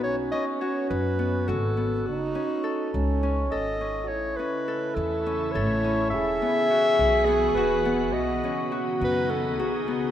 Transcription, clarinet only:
X:1
M:7/8
L:1/8
Q:1/4=104
K:Bmix
V:1 name="Clarinet"
c d c B2 A2 | F4 z d2 | c B2 A2 c2 | e4 G B2 |
d2 z B A G2 |]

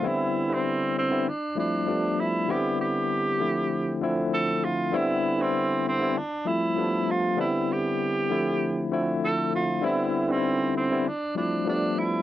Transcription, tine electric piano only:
X:1
M:4/4
L:1/16
Q:1/4=98
K:C
V:1 name="Tine electric piano"
[D,G,B,CE]3 [D,G,CEB]4 [D,G,B,CE] z2 [F,G,A,CE]2 [F,G,A,B,D]4 | [D,G,B,CE]6 [D,F,A,CE]4 [D,F,A,CE]6 | [D,G,B,CE]3 [D,G,CEB]4 [D,G,B,CE] z2 [F,G,A,CE]2 [F,G,A,B,D]4 | [D,G,B,CDE]6 [D,F,A,CE]4 [D,F,A,CE]6 |
[D,G,B,CE]3 [D,G,C_E=EB]4 [D,G,B,CE] z2 [F,G,A,CE]2 [F,G,A,B,D]4 |]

